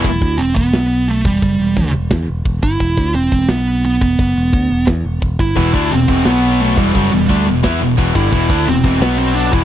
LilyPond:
<<
  \new Staff \with { instrumentName = "Lead electric guitar" } { \time 4/4 \key e \minor \tempo 4 = 174 e'4 c'8 b4. a8 g8~ | g4. r2 e'8~ | e'4 c'4 b4 b8 b8~ | b2 r4. e'8~ |
e'4 c'4 b4 a8 g8~ | g4. r2 e'8~ | e'4 c'4 b8 c'8 d'8 e'8 | }
  \new Staff \with { instrumentName = "Distorted electric guitar" } { \clef bass \time 4/4 \key e \minor r1 | r1 | r1 | r1 |
<e, b, e>8 <d a d'>8 <e, b,>8 <e, b, e>8 <b, fis b>4. <e, b, e>8 | <fis, cis fis>8 <e, b,>8 <d a d'>8 <e, b,>8 <e b e'>8 <e, b,>8 <e, b, e>8 <g, d g>8 | <e, b, e>8 <d a d'>8 <e, b,>8 <e, b, e>8 <b, fis b>4. <e, b, e>8 | }
  \new Staff \with { instrumentName = "Distorted electric guitar" } { \clef bass \time 4/4 \key e \minor r1 | r1 | r1 | r1 |
<e, b, e>8 <d a d'>8 <e, b,>8 <e, b, e>8 <b, fis b>4. <e, b, e>8 | <fis, cis fis>8 <e, b,>8 <d a d'>8 <e, b,>8 <e b e'>8 <e, b,>8 <e, b, e>8 <g, d g>8 | <e, b, e>8 <d a d'>8 <e, b,>8 <e, b, e>8 <b, fis b>4. <e, b, e>8 | }
  \new Staff \with { instrumentName = "Picked electric bass" } { \clef bass \time 4/4 \key e \minor e,,8 d,8 e,,8 e,,8 b,,4. e,,8 | fis,,8 e,,8 d,8 e,,8 e,8 e,,8 e,,8 g,,8 | e,,8 d,8 e,,8 e,,8 b,,4. e,,8 | fis,,8 e,,8 d,8 e,,8 e,8 e,,8 e,,8 g,,8 |
e,,8 d,8 e,,8 e,,8 b,,4. e,,8 | fis,,8 e,,8 d,8 e,,8 e,8 e,,8 e,,8 g,,8 | e,,8 d,8 e,,8 e,,8 b,,4. e,,8 | }
  \new DrumStaff \with { instrumentName = "Drums" } \drummode { \time 4/4 <hho bd>8 bd8 hho8 bd8 <hho sn>4 hho8 bd8 | <hho bd>4 <hho bd>4 <hho bd sn>4 <hho bd>8 bd8 | <hho bd>8 bd8 hho8 bd8 <hho sn>4 hho8 bd8 | <hho bd>4 <hho bd>4 <hho bd sn>4 <hho bd>8 bd8 |
<hho bd>8 bd8 hho8 bd8 <hho sn>4 hho8 bd8 | <hho bd>4 <hho bd>4 <hho bd sn>4 <hho bd>8 bd8 | <hho bd>8 bd8 hho8 bd8 <hho sn>4 hho8 bd8 | }
>>